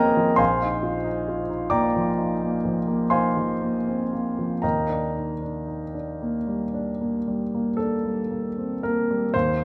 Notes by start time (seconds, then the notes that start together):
Already playing: D#2 F3 A#3 C4 C#4 G#4 A#4 C#5 D#5 F5 G5 G#5 A#5
0.17 F3
0.36 A#1 C5 F5 G#5 C6
0.62 D#4
0.83 F4
1.04 D#4
1.29 F4
1.50 D#4
1.70 A#3 D5 G5 A#5 D6
1.96 F3
2.18 D#4
2.42 A#3
2.65 F3
2.88 A#3
3.10 D#4 C5 F5 G#5 C6
3.37 F3
3.61 A#3
3.87 C4
4.12 A#3
4.39 F3
4.62 D#2 A#4 D#5 G5 A#5
4.89 D4
5.16 D#4
5.42 D4
5.67 D#4
5.94 D4
6.22 A#3
6.48 G3
6.74 D4
7.01 A#3
7.28 G3
7.55 A#3
7.77 D4 A4
8.06 G3
8.31 A#3
8.58 C4
8.83 A#3 A#4
9.11 G3
9.34 D#2 C5